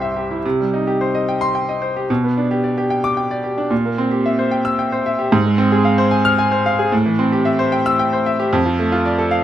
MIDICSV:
0, 0, Header, 1, 2, 480
1, 0, Start_track
1, 0, Tempo, 551471
1, 382, Time_signature, 3, 2, 24, 8
1, 2290, Tempo, 535236
1, 8395, End_track
2, 0, Start_track
2, 0, Title_t, "Grand piano"
2, 0, Program_c, 0, 0
2, 0, Control_c, 0, 64, 127
2, 0, Note_on_c, 0, 36, 73
2, 0, Note_on_c, 0, 48, 75
2, 0, Note_on_c, 0, 55, 58
2, 0, Note_on_c, 0, 64, 65
2, 0, Note_on_c, 0, 67, 62
2, 0, Note_on_c, 0, 72, 61
2, 0, Note_on_c, 0, 76, 66
2, 0, Note_on_c, 0, 79, 61
2, 0, Note_on_c, 0, 84, 78
2, 14, Note_off_c, 0, 76, 0
2, 14, Note_on_c, 0, 76, 66
2, 142, Note_off_c, 0, 67, 0
2, 142, Note_on_c, 0, 67, 61
2, 212, Note_off_c, 0, 76, 0
2, 269, Note_off_c, 0, 64, 0
2, 269, Note_on_c, 0, 64, 57
2, 337, Note_off_c, 0, 67, 0
2, 344, Note_off_c, 0, 36, 0
2, 349, Note_off_c, 0, 48, 0
2, 387, Note_off_c, 0, 64, 0
2, 395, Note_on_c, 0, 48, 81
2, 399, Control_c, 0, 64, 0
2, 400, Note_off_c, 0, 55, 0
2, 404, Note_off_c, 0, 84, 0
2, 405, Note_off_c, 0, 72, 0
2, 408, Note_off_c, 0, 79, 0
2, 519, Control_c, 0, 64, 127
2, 523, Note_on_c, 0, 55, 55
2, 640, Note_on_c, 0, 63, 66
2, 706, Note_off_c, 0, 55, 0
2, 760, Note_on_c, 0, 67, 68
2, 823, Note_off_c, 0, 63, 0
2, 879, Note_on_c, 0, 72, 66
2, 942, Note_off_c, 0, 67, 0
2, 998, Note_on_c, 0, 75, 69
2, 1060, Note_off_c, 0, 72, 0
2, 1119, Note_on_c, 0, 79, 73
2, 1179, Note_off_c, 0, 75, 0
2, 1227, Note_on_c, 0, 84, 90
2, 1299, Note_off_c, 0, 79, 0
2, 1347, Note_on_c, 0, 79, 67
2, 1414, Note_off_c, 0, 84, 0
2, 1469, Note_on_c, 0, 75, 64
2, 1534, Note_off_c, 0, 79, 0
2, 1582, Note_on_c, 0, 72, 66
2, 1655, Note_off_c, 0, 75, 0
2, 1710, Note_on_c, 0, 67, 64
2, 1771, Note_off_c, 0, 72, 0
2, 1788, Note_off_c, 0, 48, 0
2, 1823, Note_off_c, 0, 67, 0
2, 1829, Note_on_c, 0, 47, 84
2, 1835, Control_c, 0, 64, 0
2, 1951, Note_on_c, 0, 59, 56
2, 1968, Control_c, 0, 64, 127
2, 2066, Note_on_c, 0, 62, 64
2, 2133, Note_off_c, 0, 59, 0
2, 2185, Note_on_c, 0, 67, 66
2, 2249, Note_off_c, 0, 62, 0
2, 2296, Note_on_c, 0, 74, 61
2, 2369, Note_off_c, 0, 67, 0
2, 2420, Note_on_c, 0, 67, 74
2, 2486, Note_off_c, 0, 74, 0
2, 2534, Note_on_c, 0, 79, 72
2, 2608, Note_off_c, 0, 67, 0
2, 2657, Note_on_c, 0, 86, 93
2, 2725, Note_off_c, 0, 79, 0
2, 2773, Note_on_c, 0, 79, 69
2, 2847, Note_off_c, 0, 86, 0
2, 2898, Note_on_c, 0, 74, 69
2, 2966, Note_off_c, 0, 79, 0
2, 3013, Note_on_c, 0, 67, 67
2, 3089, Note_off_c, 0, 74, 0
2, 3137, Note_on_c, 0, 62, 67
2, 3207, Note_off_c, 0, 67, 0
2, 3226, Note_off_c, 0, 47, 0
2, 3254, Note_on_c, 0, 46, 82
2, 3257, Note_off_c, 0, 62, 0
2, 3274, Control_c, 0, 64, 0
2, 3386, Note_on_c, 0, 58, 63
2, 3424, Control_c, 0, 64, 127
2, 3502, Note_on_c, 0, 60, 70
2, 3573, Note_off_c, 0, 58, 0
2, 3620, Note_on_c, 0, 67, 66
2, 3692, Note_off_c, 0, 60, 0
2, 3748, Note_on_c, 0, 76, 66
2, 3811, Note_off_c, 0, 67, 0
2, 3866, Note_on_c, 0, 72, 69
2, 3937, Note_off_c, 0, 76, 0
2, 3979, Note_on_c, 0, 79, 73
2, 4056, Note_off_c, 0, 72, 0
2, 4099, Note_on_c, 0, 88, 88
2, 4173, Note_off_c, 0, 79, 0
2, 4225, Note_on_c, 0, 79, 71
2, 4294, Note_off_c, 0, 88, 0
2, 4345, Note_on_c, 0, 72, 72
2, 4416, Note_off_c, 0, 79, 0
2, 4469, Note_on_c, 0, 76, 67
2, 4537, Note_off_c, 0, 72, 0
2, 4583, Note_on_c, 0, 67, 74
2, 4658, Note_off_c, 0, 76, 0
2, 4667, Note_off_c, 0, 46, 0
2, 4704, Note_off_c, 0, 67, 0
2, 4704, Note_on_c, 0, 44, 92
2, 4721, Control_c, 0, 64, 0
2, 4820, Note_on_c, 0, 56, 60
2, 4887, Control_c, 0, 64, 127
2, 4935, Note_on_c, 0, 60, 81
2, 5014, Note_off_c, 0, 56, 0
2, 5060, Note_on_c, 0, 68, 75
2, 5131, Note_off_c, 0, 60, 0
2, 5174, Note_on_c, 0, 77, 70
2, 5252, Note_off_c, 0, 68, 0
2, 5294, Note_on_c, 0, 72, 85
2, 5367, Note_off_c, 0, 77, 0
2, 5410, Note_on_c, 0, 80, 82
2, 5486, Note_off_c, 0, 72, 0
2, 5535, Note_on_c, 0, 89, 96
2, 5604, Note_off_c, 0, 80, 0
2, 5657, Note_on_c, 0, 80, 85
2, 5727, Note_off_c, 0, 89, 0
2, 5773, Note_on_c, 0, 72, 79
2, 5848, Note_off_c, 0, 80, 0
2, 5902, Note_on_c, 0, 77, 81
2, 5967, Note_off_c, 0, 72, 0
2, 6020, Note_on_c, 0, 68, 76
2, 6092, Note_off_c, 0, 77, 0
2, 6101, Note_off_c, 0, 44, 0
2, 6138, Note_off_c, 0, 68, 0
2, 6138, Note_on_c, 0, 45, 91
2, 6153, Control_c, 0, 64, 0
2, 6259, Note_on_c, 0, 52, 70
2, 6314, Control_c, 0, 64, 127
2, 6377, Note_on_c, 0, 60, 81
2, 6449, Note_off_c, 0, 52, 0
2, 6497, Note_on_c, 0, 67, 76
2, 6568, Note_off_c, 0, 60, 0
2, 6614, Note_on_c, 0, 76, 76
2, 6688, Note_off_c, 0, 67, 0
2, 6737, Note_on_c, 0, 72, 86
2, 6807, Note_off_c, 0, 76, 0
2, 6855, Note_on_c, 0, 79, 85
2, 6929, Note_off_c, 0, 72, 0
2, 6978, Note_on_c, 0, 88, 104
2, 7048, Note_off_c, 0, 79, 0
2, 7099, Note_on_c, 0, 79, 83
2, 7170, Note_off_c, 0, 88, 0
2, 7220, Note_on_c, 0, 72, 76
2, 7290, Note_off_c, 0, 79, 0
2, 7340, Note_on_c, 0, 76, 75
2, 7412, Note_off_c, 0, 72, 0
2, 7459, Note_on_c, 0, 67, 77
2, 7532, Note_off_c, 0, 76, 0
2, 7544, Note_off_c, 0, 45, 0
2, 7578, Note_on_c, 0, 41, 98
2, 7579, Note_off_c, 0, 67, 0
2, 7595, Control_c, 0, 64, 0
2, 7694, Note_on_c, 0, 53, 73
2, 7763, Control_c, 0, 64, 127
2, 7815, Note_on_c, 0, 57, 84
2, 7887, Note_off_c, 0, 53, 0
2, 7931, Note_on_c, 0, 65, 81
2, 8006, Note_off_c, 0, 57, 0
2, 8051, Note_on_c, 0, 74, 76
2, 8122, Note_off_c, 0, 65, 0
2, 8168, Note_on_c, 0, 69, 84
2, 8241, Note_off_c, 0, 74, 0
2, 8281, Note_on_c, 0, 77, 81
2, 8359, Note_off_c, 0, 69, 0
2, 8395, Note_off_c, 0, 41, 0
2, 8395, Note_off_c, 0, 77, 0
2, 8395, End_track
0, 0, End_of_file